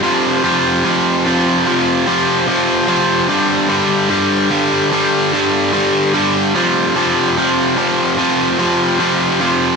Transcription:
\new Staff \with { instrumentName = "Overdriven electric guitar" } { \clef bass \time 4/4 \key f \mixolydian \tempo 4 = 74 <f, c f>8 <f, c f>8 <f, c f>8 <f, c f>8 <f, c f>8 <f, c f>8 <f, c f>8 <f, c f>8 | <g, d g>8 <g, d g>8 <g, d g>8 <g, d g>8 <g, d g>8 <g, d g>8 <g, d g>8 <g, d g>8 | <f, c f>8 <f, c f>8 <f, c f>8 <f, c f>8 <f, c f>8 <f, c f>8 <f, c f>8 <f, c f>8 | }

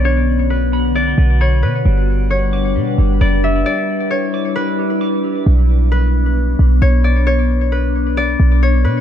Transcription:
<<
  \new Staff \with { instrumentName = "Harp" } { \time 4/4 \key b \minor \tempo 4 = 133 cis''4 b'4 d''4 cis''8 b'8 | r4 cis''4 r4 d''8 e''8 | d''4 cis''4 b'4 r4 | r4 b'4 r4 cis''8 d''8 |
cis''4 b'4 d''4 cis''8 b'8 | }
  \new Staff \with { instrumentName = "Clean electric guitar" } { \time 4/4 \key b \minor <cis' d' b' b''>4. b''8 b8 b'8 b''8 b'8 | g4. d'''8 g8 g'8 b''8 g'8 | g4. d'''8 g8 g'8 d'''8 g'8 | r1 |
r1 | }
  \new Staff \with { instrumentName = "Ambient pad" } { \time 4/4 \key b \minor << { <d fis'>1 | <g d' b'>1~ | <g d' b'>1 | <b d'>1~ |
<b d'>1 | } \\ { b1 | fis''1 | e'1 | r1 |
r1 | } >> }
  \new Staff \with { instrumentName = "808-style bass" } { \clef bass \time 4/4 \key b \minor b,,2~ b,,8 b,,4 b,8 | g,,2 b,8 g,,8 fis,,4 | r1 | b,,2~ b,,8 b,,8 b,,4~ |
b,,2~ b,,8 b,,4 b,8 | }
>>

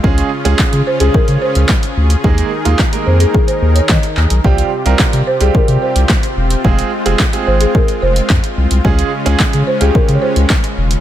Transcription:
<<
  \new Staff \with { instrumentName = "Marimba" } { \time 4/4 \key des \lydian \tempo 4 = 109 r4. c''16 aes'16 bes'8 c''4 r8 | r4. c''16 aes'16 aes'16 c''8 des''16 r4 | r4. c''16 aes'16 bes'8 c''4 r8 | r4. c''16 aes'16 bes'8 c''4 r8 |
r4. c''16 aes'16 bes'16. des''32 c''4 r8 | }
  \new Staff \with { instrumentName = "Grand piano" } { \time 4/4 \key des \lydian <aes des' f' aes'>8 r16 <aes des' f' aes'>8 r8 <aes des' f' aes'>4~ <aes des' f' aes'>16 r4 | <aes bes ees' aes'>8 r16 <aes bes ees' f'>16 r16 <aes bes ees' bes'>4~ <aes bes ees' bes'>16 r4. | <g c' f' g'>8 r16 <g c' f' bes'>8 r8 <g c' f' g'>4~ <g c' f' g'>16 r4 | <aes c' f' aes'>8 r16 <aes c' f' aes'>16 r16 <aes c' f' aes'>4~ <aes c' f' aes'>16 r4. |
<aes des' f' aes'>8 r16 <aes des' f' aes'>8 r8 <aes des' f' g'>4~ <aes des' f' g'>16 r4 | }
  \new Staff \with { instrumentName = "Supersaw synth" } { \time 4/4 \key des \lydian << { <des des' aes'>1 | <ees ees' bes'>1 | <c c' g'>1 | aes1 |
<des aes des'>1 | } \\ { f'1 | r1 | f'1~ | f'1~ |
f'1 | } >> }
  \new Staff \with { instrumentName = "Sub bass" } { \clef bass \time 4/4 \key des \lydian des,8 r16 des,16 des16 des16 r16 des,16 des16 des16 r16 des,16 r8 d,8 | ees,8 r16 ees,16 r8 f,8 r8 ees,8 ees16 r16 ees,16 b,,16 | c,8 r16 c,16 c16 c16 r16 c,16 c16 c16 r16 c,16 r8 e,,8 | f,,8 r16 f,,16 r8 aes,,8 r8 f,,8 f,16 r16 c,16 c,16 |
des,8 r16 des,16 des16 des16 r16 des,16 des16 des16 r16 des,16 r8 e,,8 | }
  \new DrumStaff \with { instrumentName = "Drums" } \drummode { \time 4/4 bd16 hh8 hh16 <hc bd sn>16 hh8 hh16 bd16 hh8 hh16 <hc bd sn>16 hh8 hh16 | bd16 hh8 hh16 <hc bd sn>16 hh8 hh16 bd16 hh8 hh16 <hc bd sn>16 hh16 hc16 hh16 | bd16 hh8 hh16 <hc bd sn>16 hh8 hh16 bd16 hh8 hh16 <hc bd sn>16 hh8 hh16 | bd16 hh8 hh16 <hc bd sn>16 hh8 hh16 bd16 hh8 hh16 <hc bd sn>16 hh8 hh16 |
bd16 hh8 hh16 <hc bd sn>16 hh8 hh16 bd16 hh8 hh16 <hc bd sn>16 hh8 hh16 | }
>>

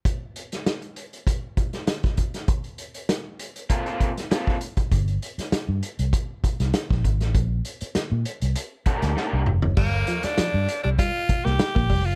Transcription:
<<
  \new Staff \with { instrumentName = "Overdriven electric guitar" } { \time 4/4 \key g \minor \tempo 4 = 99 r1 | r2 <bes c' f' a'>16 <bes c' f' a'>16 r8 <bes c' f' a'>16 r8. | r1 | r2 r8 <bes d' g' bes'>16 r16 <bes d' g' bes'>16 r8. |
r1 | }
  \new Staff \with { instrumentName = "Tenor saxophone" } { \time 4/4 \key g \minor r1 | r1 | r1 | r1 |
bes8. d'4 d'16 f'8. g'4 f'16 | }
  \new Staff \with { instrumentName = "Clean electric guitar" } { \clef bass \time 4/4 \key g \minor r1 | r1 | r1 | r1 |
g16 r16 f16 r16 f16 r8 g16 g16 r8 bes16 r16 bes16 g16 r16 | }
  \new Staff \with { instrumentName = "Fingered electric bass" } { \clef bass \time 4/4 \key g \minor r1 | r1 | g,,8 r8. g,16 r16 c,16 r8. c,16 r16 bes,,16 aes,,16 a,,16 | bes,,8 r8. bes,16 r16 c,16 r8. d,16 r16 c,16 f,,16 fis,,16 |
g,,8 r8. g,16 r16 c,16 r8. c,16 r16 bes,,16 f,,16 fis,,16 | }
  \new DrumStaff \with { instrumentName = "Drums" } \drummode { \time 4/4 <hh bd>8 hh16 <hh sn>16 <hh sn>16 hh16 hh16 hh16 <hh bd>8 <hh bd>16 <hh sn>16 <hh sn>16 <hh bd sn>16 <hh bd>16 <hh sn>16 | <hh bd>16 hh16 hh16 hh16 <hh sn>8 hh16 hh16 <hh bd>16 hh16 <hh bd>16 <hh sn>16 <hh sn>16 <bd sn>16 hh16 <hh bd>16 | <hh bd>16 hh16 hh16 <hh sn>16 <hh sn>8 hh16 hh16 <hh bd>8 <hh bd>16 <hh sn>16 <hh sn>16 <bd sn>16 <hh bd>16 <hh sn>16 | <hh bd>8 hh16 hh16 <hh sn>8 hh16 hh16 hh8 <hh bd>16 <hh sn>16 sn8 toml16 tomfh16 |
<cymc bd>8 hh16 <hh sn>16 <hh sn>8 hh8 <hh bd>8 <hh bd>16 sn16 <hh sn>16 <bd sn>16 <hho bd>8 | }
>>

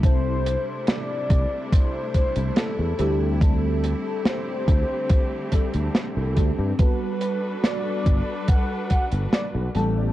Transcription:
<<
  \new Staff \with { instrumentName = "Soft synth lead" } { \time 4/4 \key c \lydian \tempo 4 = 71 c''4 d''4 c''8 c''8 a'8 g'8 | a'4 c''2 r4 | b'4 d''4 fis''8 fis''8 d''8 r8 | }
  \new Staff \with { instrumentName = "String section" } { \time 4/4 \key c \lydian <c g a d' e'>1 | <d c' g'>1 | <g d' fis' a' b'>2.~ <g d' fis' a' b'>8 <a g'>8 | }
  \new Staff \with { instrumentName = "FM electric piano" } { \time 4/4 \key c \lydian <g c' e' a'>2.~ <g c' e' a'>8 <g c' e' a'>8 | <g c' d' a'>2~ <g c' d' a'>8 <g c' d' a'>4 <g c' d' a'>8 | <g b fis' a'>2.~ <g b fis' a'>8 <g b c' a'>8 | }
  \new Staff \with { instrumentName = "Fretless electric bass" } { \clef bass \time 4/4 \key c \lydian c,8 r4 c,16 r4 c,16 r16 e,16 d,8~ | d,8 r4 d,16 r4 d,16 r16 c,16 d,16 g,16 | r4. g,,16 r4 g,,16 r16 b,,16 a,,8 | }
  \new DrumStaff \with { instrumentName = "Drums" } \drummode { \time 4/4 <hh bd>8 hh8 <hh sn>8 <hh bd>8 <hh bd>8 <hh bd>16 hh16 <hh sn>8 hh8 | <hh bd>8 hh8 <hh sn>8 <hh bd>8 <hh bd>8 <hh bd>16 hh16 <hh sn>8 <hh bd>8 | <hh bd>8 hh8 <hh sn>8 <hh bd>8 <hh bd>8 <hh bd>16 hh16 <hh sn>8 hh8 | }
>>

